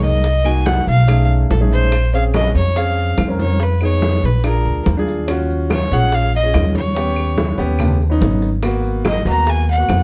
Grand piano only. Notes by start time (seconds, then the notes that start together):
Already playing: A#3 D#4 G#4
0.44 A#3 D#4 F#4
1.07 A3 C#4 D#4 G#4
1.60 A3 C#4 D#4 G#4
2.13 C4 C#4 G#4
2.76 C4 C#4 G#4
3.28 C4 C#4 A#4
3.81 B3 D#4 G#4
4.44 D4 F4 G#4
4.97 D4 F4 G#4
5.28 C#4 F4 F#4
5.92 C#4 F4 G#4
6.43 C#4 F4 G#4
6.95 B3 C#4 G4
7.58 B3 C#4 G4
8.10 B3 C#4 D#4
8.63 A#3 B3 F#4
9.25 A#3 B3 F#4
9.78 A#3 B3 F#4